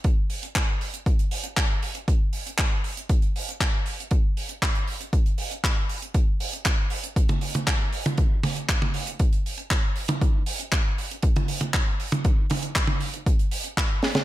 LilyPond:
\new DrumStaff \with { instrumentName = "Drums" } \drummode { \time 4/4 \tempo 4 = 118 <hh bd>8 hho16 hh16 <hc hh bd>8 hho16 hh16 <hh bd>16 hh16 hho16 hh16 <hc hh bd>8 hho16 hh16 | <hh bd>8 hho16 hh16 <hc hh bd>8 hho16 hh16 <hh bd>16 hh16 hho16 hh16 <hc hh bd>8 hho16 hh16 | <hh bd>8 hho16 hh16 <hc hh bd>16 hh16 hho16 hh16 <hh bd>16 hh16 hho16 hh16 <hc hh bd>8 hho16 hh16 | <hh bd>8 hho16 hh16 <hc hh bd>8 hho16 hh16 <hh bd>16 <hh tommh>16 hho16 <hh tommh>16 <hc hh bd>8 hho16 <hh tommh>16 |
<hh bd>8 <hho tommh>16 hh16 <hc hh bd>16 tommh16 hho16 hh16 <hh bd>16 hh16 hho16 hh16 <hc hh bd>8 hho16 <hh tommh>16 | <hh bd>8 hho16 hh16 <hc hh bd>8 hho16 hh16 <hh bd>16 <hh tommh>16 hho16 <hh tommh>16 <hc hh bd>8 hho16 <hh tommh>16 | <hh bd>8 <hho tommh>16 hh16 <hc hh bd>16 tommh16 hho16 hh16 <hh bd>16 hh16 hho16 hh16 <hc hh bd>8 <hho sn>16 <hh sn tommh>16 | }